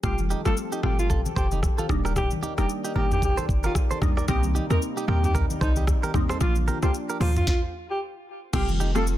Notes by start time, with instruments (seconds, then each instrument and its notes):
0.03 808-style bass F1, brass ensemble F3 C4 G4 A4, synth pluck G3 A3 C4 F4, alto saxophone G4, kick, cross-stick, low conga, shaker
0.18 high conga, shaker
0.30 clean electric guitar D#4 G4, high conga, shaker
0.45 808-style bass G1, synth pluck G3 A3 C4 F4, clean electric guitar F4 A4, alto saxophone A4, cross-stick, shaker
0.57 shaker
0.72 clean electric guitar D#4 G4, shaker
0.83 808-style bass G1, synth pluck G3 A3 C4 F4, clean electric guitar F4 A4, alto saxophone G4, cross-stick, high conga, low conga
0.99 alto saxophone F4, shaker
1.10 clean electric guitar F4 A4, kick, low conga, shaker
1.26 high conga, shaker
1.36 808-style bass F1, alto saxophone G4, clean electric guitar A4 C5, kick, shaker
1.51 clean electric guitar D#4 G4, high conga, shaker
1.63 kick, cross-stick, shaker
1.78 clean electric guitar F4 A4, high conga, shaker
1.89 808-style bass D#1, brass ensemble D#3 A#3 D5, synth pluck G3 A#3 D4 D#4, kick, cross-stick, high conga, low conga, shaker
2.05 clean electric guitar G4 A#4, cross-stick, shaker
2.16 alto saxophone G4, kick, cross-stick, low conga, shaker
2.31 high conga, shaker
2.43 clean electric guitar D#4 G4, high conga, shaker
2.58 808-style bass F1, synth pluck G3 A#3 D4 D#4, clean electric guitar G4 A#4, alto saxophone G4, cross-stick, shaker
2.69 shaker
2.84 clean electric guitar D#4 G4, shaker
2.96 808-style bass G1, synth pluck G3 A#3 D4 D#4, clean electric guitar G4 A#4, alto saxophone G4, high conga, low conga
3.11 alto saxophone G4, mid tom, shaker
3.22 alto saxophone G4, kick, low conga, shaker
3.37 clean electric guitar A4 C5, high conga, shaker
3.49 808-style bass G1, kick, shaker
3.64 alto saxophone F4, clean electric guitar G4 A#4, high conga, shaker
3.75 kick, cross-stick, shaker
3.91 clean electric guitar A4 C5, high conga, shaker
4.02 808-style bass A#1, synth pluck G3 A#3 D4 D#4, kick, cross-stick, mid tom, high conga, low conga, shaker
4.17 clean electric guitar A#4 D5, cross-stick, shaker
4.28 808-style bass C2, brass ensemble C3 G3 D#4, synth pluck G3 A#3 C4 D#4, alto saxophone G4, kick, cross-stick, low conga, shaker
4.43 high conga, shaker
4.55 clean electric guitar D#4 G4, high conga, shaker
4.70 808-style bass D#2, synth pluck G3 A#3 C4 D#4, clean electric guitar G4 A#4, alto saxophone A#4, cross-stick, shaker
4.82 shaker
4.97 clean electric guitar D#4 G4, shaker
5.08 808-style bass D#2, synth pluck G3 A#3 C4 D#4, clean electric guitar G4 A#4, alto saxophone G4, cross-stick, high conga, low conga
5.24 alto saxophone G4, mid tom, shaker
5.35 clean electric guitar G4 A#4, kick, low conga, shaker
5.50 high conga, shaker
5.61 808-style bass C2, alto saxophone D#4, clean electric guitar A4 C5, kick, shaker
5.76 clean electric guitar D#4 G4, high conga, shaker
5.87 kick, cross-stick, shaker
6.03 clean electric guitar G4 A#4, high conga, shaker
6.14 synth pluck G3 A#3 C4 D#4, kick, cross-stick, mid tom, high conga, low conga, shaker
6.29 clean electric guitar A4 C5, cross-stick, shaker
6.41 808-style bass A#1, synth pluck F3 A#3 D4 F4, brass ensemble F3 D4, alto saxophone F4, kick, cross-stick, low conga, shaker
6.55 high conga, shaker
6.67 clean electric guitar G4 A#4, high conga, shaker
6.83 808-style bass C2, synth pluck F3 A#3 D4 F4, alto saxophone G4, clean electric guitar A4 C5, cross-stick, shaker
6.94 shaker
7.09 clean electric guitar G4 A#4, shaker
7.20 808-style bass D2, synth pluck F3 A#3 D4 F4, alto saxophone F4, clean electric guitar A4 C5, cross-stick, open hi-hat, high conga, low conga, shaker
7.36 alto saxophone F4, mid tom, shaker
7.47 alto saxophone F4, kick, snare
7.90 alto saxophone G4
8.53 808-style bass F1, brass ensemble F3 C4 G4 A4, synth pluck G3 A3 C4 F4, alto saxophone G4, kick, cross-stick, crash, low conga, shaker
8.68 high conga, shaker
8.80 clean electric guitar D#4 G4, high conga, shaker
8.95 synth pluck G3 A3 C4 F4, clean electric guitar F4 A4, alto saxophone A4, cross-stick, shaker
9.07 shaker